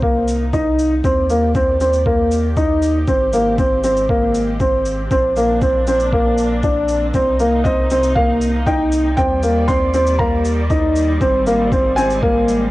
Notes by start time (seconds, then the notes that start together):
Already playing: C2 C3 A#3 D#4
0.02 A#3, kick
0.28 shaker
0.53 D#4, kick, shaker
0.79 shaker
1.04 D#2 D#3 C4 G4 D5, kick, shaker
1.30 A#3, shaker
1.55 C4, kick, shaker
1.81 C4, shaker
1.93 shaker
2.06 A#3, kick
2.31 shaker
2.57 D#4, kick, shaker
2.82 shaker
3.08 G#1 G#3 C4, kick, shaker
3.33 A#3, shaker
3.58 C4, kick, shaker
3.84 C4, shaker
3.97 shaker
4.09 A#3, kick
4.34 shaker
4.60 C4, kick, shaker
4.85 shaker
5.11 A#1 A#3 C4 D4, kick, shaker
5.36 A#3, shaker
5.62 C4, kick, shaker
5.87 C4, shaker
6.00 shaker
6.13 A#3, kick
6.38 shaker
6.63 D4, kick, shaker
6.88 shaker
7.14 C2 C3 C4 D#4, kick, shaker
7.40 A#3, shaker
7.64 C4 D#5, kick, shaker
7.90 C4, shaker
8.03 shaker
8.15 A#3 F5, kick
8.41 shaker
8.66 D#4 G5, kick, shaker
8.92 shaker
9.17 D#2 D#3 G3 C4 D5 G5, kick, shaker
9.43 A#3, shaker
9.68 C4 C6, kick, shaker
9.94 C4, shaker
10.07 shaker
10.19 A#3 A#5, kick
10.45 shaker
10.70 D#4, kick, shaker
10.96 shaker
11.21 G#1 G#3 C4, kick, shaker
11.47 A#3, shaker
11.72 C4, kick, shaker
11.96 C4 G#5, shaker
12.10 shaker
12.23 A#3, kick
12.48 shaker